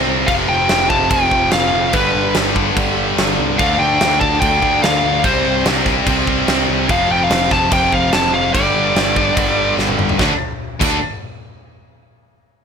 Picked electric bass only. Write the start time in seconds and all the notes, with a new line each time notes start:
0.07 C2
0.28 F1
0.49 F1
0.70 F1
0.90 F1
1.11 F1
1.31 F1
1.52 F1
1.73 F1
1.94 G1
2.15 G1
2.35 G1
2.77 G1
3.17 G1
3.38 C2
3.60 D2
3.80 D2
4.01 D2
4.21 D2
4.42 D2
4.63 D2
4.83 D2
5.04 D2
5.24 C2
5.45 C2
5.66 C2
6.07 C2
6.48 C2
6.69 C2
6.89 F1
7.09 F1
7.30 F1
7.52 F1
7.72 F1
7.93 F1
8.13 F1
8.34 F1
8.55 G1
8.74 G1
8.95 G1
9.37 G1
9.77 G1
9.98 G1
10.20 D2
10.81 D2